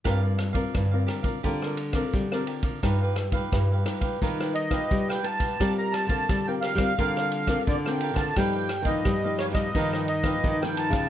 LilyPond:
<<
  \new Staff \with { instrumentName = "Accordion" } { \time 4/4 \key g \minor \tempo 4 = 87 r1 | r2 r8 dis''8. g''16 a''8~ | a''16 bes''16 a''8. g''16 f''4. d''16 g''8 a''16 | g''8. dis''8. cis''16 dis''8. dis''8. g''16 a''8 | }
  \new Staff \with { instrumentName = "Cavaquinho" } { \time 4/4 \key g \minor <g' bes' d'' f''>16 <bes' d'' f''>16 r16 <bes' d'' f''>8 <bes' d'' f''>16 <g' bes' d'' f''>16 <bes' d'' f''>16 <g' bes' d'' f''>16 <bes' d'' f''>16 r16 <bes' d'' f''>8 <bes' d'' f''>16 <g' bes' d'' f''>16 <bes' d'' f''>16 | <dis' g' b' f''>16 <g' b' f''>16 r16 <g' b' f''>8 <g' b' f''>16 <dis' g' b' f''>16 <g' b' f''>16 <dis' g' b' f''>16 <g' b' f''>16 r16 <g' b' f''>8 <g' b' f''>16 <dis' g' b' f''>16 <g' b' f''>16 | <g' bes' d'' f''>16 <bes' d'' f''>16 r16 <bes' d'' f''>8 <bes' d'' f''>16 <g' bes' d'' f''>8 <g' bes' d'' f''>16 <bes' d'' f''>16 r16 <bes' d'' f''>8 <bes' d'' f''>16 <g' bes' d'' f''>16 <bes' d'' f''>16 | <dis' g' b' f''>16 <g' b' f''>16 r16 <g' b' f''>8 <g' b' f''>16 <dis' g' b' f''>8 <dis' g' b' f''>16 <g' b'>16 r16 <g' b' f''>8 <g' b' f''>16 <dis' g' b' f''>16 <g' b' f''>16 | }
  \new Staff \with { instrumentName = "Nylon-string guitar" } { \time 4/4 \key g \minor << { <c' f' bes'>8. <c' f' bes'>8 <c' f' bes'>8 <c' f' bes'>16 <c' f' bes'>8 r16 <c' f' bes'>8 <c' f' bes'>8. | <dis' f' b'>8. <dis' f' b'>8. <dis' f' b'>8 <dis' f' b'>8 r16 <dis' f' b'>8. <dis' f' b'>16 r16 | <c' f' bes'>8. <c' f' bes'>8 <c' f' bes'>8 <c' f' bes'>16 <c' f' bes'>8. <c' f' bes'>8 <c' f' bes'>8. | <f b dis'>8 r16 <f b dis'>8 <f b dis'>8 <f b dis'>16 <f b dis'>8 r16 <f b dis'>8 <f b dis'>8. | } \\ { g4 d4 g4 d4 | g4 g4 g4 g4 | g4 d4 g4 d4 | g,4 g,4 g,4 g,4 | } >> }
  \new Staff \with { instrumentName = "Nylon-string guitar" } { \clef bass \time 4/4 \key g \minor g,4 g,8 r8 d4 g8 r8 | g,4 g,8 r8 dis4 g8 r8 | g8. d16 g8. g16 d4 d8. d16 | g8. dis16 g8. g16 dis4 dis8. cis16 | }
  \new DrumStaff \with { instrumentName = "Drums" } \drummode { \time 4/4 <bd cymr ss>8 <cymr ss>16 <bd cymr>16 <bd cymr ss>8 <cymr ss>16 <bd cymr>16 <bd cymr>16 ss16 cymr16 <bd cymr ss>16 <bd cymr>16 ss16 cymr16 <bd cymr>16 | <bd cymr ss>8 <cymr ss>16 <bd cymr>16 <bd cymr ss>8 <cymr ss>16 <bd cymr>16 <bd cymr>16 ss16 cymr16 <bd cymr ss>16 <bd cymr>16 ss16 cymr16 <bd cymr>16 | <bd cymr ss>8 <cymr ss>16 <bd cymr>16 <bd cymr ss>8 <cymr ss>16 <bd cymr ss>16 <bd cymr>16 ss16 cymr16 <bd cymr ss>16 <bd cymr>16 ss16 cymr16 <bd cymr ss>16 | <bd cymr ss>8 <cymr ss>16 <bd cymr>16 <bd cymr ss>8 <cymr ss>16 <bd cymr ss>16 <bd cymr>16 ss16 cymr16 <bd cymr ss>16 <bd cymr>16 ss16 cymr16 <bd cymr ss>16 | }
>>